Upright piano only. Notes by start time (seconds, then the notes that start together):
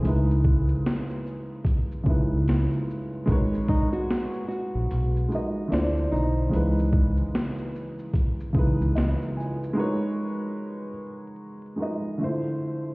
0.02 C#3 G#3 D#4
0.07 E4 B4
2.03 C#3 G#3 D#4
2.08 E4 B4
3.26 G#3 D#4 F#4 A#4
3.30 B4 C#5
5.28 G#3 D#4 F#4
5.33 A#4 B4 D#5
5.68 D3 A3 E4
5.73 F4 C5
6.49 C#3 G#3 D#4
6.54 E3 B4
8.53 C#3 G#3 D#4
8.57 E3 B4
8.95 D#5
9.37 G#5
9.73 G#3 D#4 F#4
9.77 A#4 B4 C#5
11.76 G#3 D#4 F#4 A#4
11.81 B4 D#5
12.18 D3 A3 E4
12.23 F4 C5